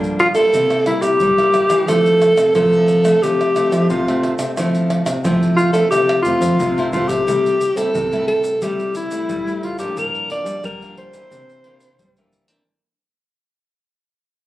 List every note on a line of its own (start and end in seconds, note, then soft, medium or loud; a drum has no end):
0.00 0.45 G2 loud
0.00 0.51 D3 medium
0.00 0.32 F3 medium
0.00 0.32 A#3 medium
0.00 0.32 D4 medium
0.00 pandeiro soft
0.00 shaker soft
0.19 0.28 F4 loud
0.19 pandeiro medium
0.35 0.82 G3 medium
0.35 0.82 A#3 medium
0.35 0.82 E4 medium
0.35 0.83 A4 loud
0.35 pandeiro medium
0.35 tamborim medium
0.35 shaker medium
0.35 surdo soft
0.54 0.83 C3 loud
0.54 1.18 C3 medium
0.54 pandeiro medium
0.54 shaker medium
0.54 surdo medium
0.70 pandeiro soft
0.70 tamborim medium
0.70 shaker soft
0.86 1.19 G3 medium
0.86 1.19 A#3 medium
0.86 1.03 E4 medium
0.86 1.19 E4 medium
0.86 pandeiro medium
0.86 tamborim medium
1.02 1.18 C3 medium
1.02 1.89 G4 loud
1.02 pandeiro medium
1.02 tamborim medium
1.02 shaker medium
1.02 surdo soft
1.20 1.86 G2 medium
1.20 1.65 G3 medium
1.20 pandeiro medium
1.20 shaker medium
1.20 surdo loud
1.38 1.50 G3 medium
1.38 1.50 A#3 medium
1.38 1.50 E4 medium
1.38 pandeiro soft
1.38 tamborim medium
1.38 shaker soft
1.38 surdo soft
1.54 1.83 G3 medium
1.54 1.83 A#3 medium
1.54 1.83 E4 medium
1.54 pandeiro medium
1.54 tamborim medium
1.54 shaker medium
1.54 surdo soft
1.70 1.85 E3 medium
1.70 pandeiro medium
1.70 tamborim medium
1.70 shaker medium
1.88 2.53 F3 medium
1.88 2.32 F3 loud
1.88 2.50 A3 medium
1.88 2.51 C4 medium
1.88 2.51 E4 medium
1.88 2.55 A4 loud
1.88 pandeiro medium
1.88 tamborim medium
1.88 shaker medium
1.88 surdo medium
2.06 pandeiro soft
2.06 shaker soft
2.22 pandeiro medium
2.22 tamborim medium
2.22 shaker medium
2.37 2.52 C3 medium
2.37 pandeiro medium
2.37 tamborim medium
2.37 shaker medium
2.37 surdo soft
2.55 3.20 C3 medium
2.55 3.13 F3 loud
2.55 3.01 A3 medium
2.55 3.01 C4 medium
2.55 3.01 E4 medium
2.55 3.24 A4 loud
2.55 pandeiro medium
2.55 tamborim medium
2.55 shaker medium
2.55 surdo loud
2.73 pandeiro soft
2.73 shaker soft
2.88 pandeiro medium
2.88 shaker medium
3.04 3.50 A3 medium
3.04 3.51 C4 medium
3.04 3.51 E4 medium
3.04 pandeiro medium
3.04 tamborim medium
3.04 shaker medium
3.04 surdo soft
3.22 3.52 C3 loud
3.22 3.87 F3 medium
3.22 3.89 G4 loud
3.22 pandeiro medium
3.22 shaker medium
3.22 surdo medium
3.41 pandeiro soft
3.41 tamborim medium
3.41 shaker soft
3.56 4.01 A3 medium
3.56 4.02 C4 medium
3.56 4.02 E4 medium
3.56 pandeiro medium
3.56 tamborim medium
3.56 shaker medium
3.72 3.87 F3 medium
3.72 pandeiro medium
3.72 tamborim medium
3.72 shaker medium
3.72 surdo soft
3.90 4.33 C3 loud
3.90 4.54 C3 medium
3.90 4.37 F4 medium
3.90 pandeiro medium
3.90 shaker medium
3.90 surdo medium
4.08 4.53 A3 medium
4.08 4.53 C4 medium
4.08 pandeiro soft
4.08 tamborim medium
4.08 shaker soft
4.08 surdo soft
4.23 pandeiro medium
4.23 tamborim medium
4.39 4.54 C3 medium
4.39 pandeiro medium
4.39 tamborim medium
4.39 shaker medium
4.57 5.01 F3 loud
4.57 5.22 F3 medium
4.57 5.01 A3 medium
4.57 5.02 C4 medium
4.57 5.02 E4 medium
4.57 pandeiro medium
4.57 tamborim medium
4.57 shaker medium
4.57 surdo medium
4.75 pandeiro soft
4.75 shaker soft
4.90 pandeiro medium
4.90 tamborim medium
5.06 5.21 C3 medium
5.06 pandeiro medium
5.06 tamborim medium
5.06 shaker medium
5.06 surdo soft
5.24 5.89 C3 medium
5.24 5.82 F3 loud
5.24 5.70 A3 medium
5.24 5.71 C4 medium
5.24 5.71 E4 medium
5.24 pandeiro medium
5.24 tamborim medium
5.24 shaker medium
5.24 surdo loud
5.43 pandeiro soft
5.43 shaker soft
5.57 5.72 F4 medium
5.57 pandeiro medium
5.57 shaker medium
5.73 6.20 A3 medium
5.73 6.20 C4 medium
5.73 6.20 E4 medium
5.73 5.90 A4 medium
5.73 pandeiro medium
5.73 tamborim medium
5.73 shaker medium
5.73 surdo soft
5.90 6.21 C3 loud
5.90 6.56 F3 medium
5.90 6.22 G4 loud
5.90 pandeiro medium
5.90 tamborim medium
5.90 shaker medium
5.90 surdo medium
6.09 pandeiro soft
6.09 tamborim medium
6.09 shaker soft
6.23 6.57 A3 medium
6.23 6.58 C4 medium
6.23 6.88 F4 medium
6.23 surdo medium
6.23 pandeiro medium
6.23 shaker medium
6.41 6.56 F3 medium
6.41 surdo loud
6.41 pandeiro medium
6.41 shaker medium
6.41 surdo soft
6.59 7.02 C3 medium
6.59 7.24 C3 medium
6.59 pandeiro medium
6.59 shaker medium
6.59 surdo medium
6.78 6.88 A3 medium
6.78 6.89 C4 medium
6.78 6.89 E4 medium
6.78 pandeiro soft
6.78 shaker soft
6.78 surdo medium
6.93 7.22 A3 medium
6.93 7.22 C4 medium
6.93 7.22 E4 medium
6.93 7.10 F4 medium
6.93 pandeiro medium
6.93 shaker medium
6.93 surdo medium
7.08 7.23 C3 medium
7.08 7.78 G4 medium
7.08 pandeiro medium
7.08 shaker medium
7.08 surdo medium
7.27 7.91 C3 soft
7.27 7.56 C3 medium
7.27 7.59 G3 soft
7.27 7.59 A3 medium
7.27 7.59 E4 medium
7.27 pandeiro medium
7.27 shaker medium
7.27 surdo medium
7.46 pandeiro soft
7.46 shaker soft
7.61 pandeiro medium
7.61 shaker medium
7.76 8.05 G3 medium
7.76 8.05 A3 medium
7.76 7.91 C4 medium
7.76 8.06 E4 medium
7.76 8.27 A4 medium
7.76 pandeiro medium
7.76 shaker medium
7.76 surdo soft
7.94 8.58 G2 medium
7.94 8.52 C3 medium
7.94 pandeiro medium
7.94 shaker medium
7.94 surdo loud
8.12 8.57 G3 medium
8.12 8.57 A3 medium
8.12 8.57 E4 medium
8.12 pandeiro soft
8.12 shaker soft
8.28 8.64 A4 medium
8.28 pandeiro medium
8.44 pandeiro medium
8.44 shaker medium
8.44 surdo soft
8.62 9.26 C3 medium
8.62 9.19 G3 loud
8.62 9.07 G3 medium
8.62 9.07 A3 soft
8.62 9.08 E4 medium
8.62 8.96 G4 medium
8.62 pandeiro medium
8.62 shaker medium
8.62 surdo medium
8.80 pandeiro soft
8.80 shaker soft
8.95 9.65 E4 medium
8.95 pandeiro medium
8.95 shaker medium
9.11 9.40 G3 medium
9.11 9.40 A3 medium
9.11 9.40 E4 medium
9.11 pandeiro medium
9.11 shaker medium
9.11 surdo soft
9.29 9.94 G2 medium
9.29 9.80 G3 medium
9.29 pandeiro medium
9.29 shaker medium
9.29 surdo medium
9.47 9.75 G3 medium
9.47 9.75 A3 medium
9.47 9.75 E4 medium
9.47 pandeiro soft
9.47 shaker soft
9.47 surdo soft
9.63 9.79 F4 medium
9.63 pandeiro medium
9.63 surdo soft
9.78 9.93 A2 medium
9.78 10.29 F3 medium
9.78 10.30 A#3 medium
9.78 10.30 D4 medium
9.78 10.00 G4 medium
9.78 pandeiro medium
9.78 shaker medium
9.96 10.25 G2 medium
9.96 10.61 G2 medium
9.96 10.31 A#4 loud
9.96 pandeiro medium
9.96 shaker medium
9.96 surdo medium
10.15 pandeiro soft
10.15 shaker soft
10.30 10.62 F3 medium
10.30 10.62 A#3 medium
10.30 10.62 D4 medium
10.30 10.62 D5 medium
10.30 pandeiro medium
10.45 10.60 G3 medium
10.45 pandeiro medium
10.45 shaker medium
10.45 surdo soft
10.64 11.29 D3 medium
10.64 11.21 G3 medium
10.64 10.96 A#4 medium
10.64 pandeiro medium
10.64 shaker medium
10.64 surdo loud
10.82 11.10 F3 medium
10.82 11.10 A#3 medium
10.82 11.11 D4 medium
10.82 pandeiro soft
10.82 shaker soft
10.97 12.29 C5 loud
10.97 pandeiro medium
11.13 11.60 E3 medium
11.13 11.60 A#3 medium
11.13 11.60 D4 medium
11.13 pandeiro medium
11.13 shaker medium
11.13 surdo soft
11.31 11.89 C3 medium
11.31 11.97 C3 soft
11.31 pandeiro medium
11.31 shaker medium
11.31 surdo medium
11.49 pandeiro soft
11.49 shaker soft
11.64 11.97 E3 soft
11.64 11.97 A#3 medium
11.64 11.98 D4 medium
11.64 pandeiro medium
11.80 pandeiro medium
11.80 shaker medium
11.80 surdo soft
11.99 12.64 G2 soft
11.99 12.48 G3 medium
11.99 pandeiro medium
11.99 shaker medium
11.99 surdo medium
12.17 12.45 E3 medium
12.17 12.46 A#3 medium
12.17 12.46 D4 medium
12.17 pandeiro soft
12.17 shaker soft
12.17 surdo soft
12.33 pandeiro medium
12.33 shaker medium
12.33 surdo soft
12.48 12.61 E3 medium
12.48 12.61 A#3 medium
12.48 12.63 C4 medium
12.48 12.62 D4 medium
12.48 pandeiro medium
12.48 shaker medium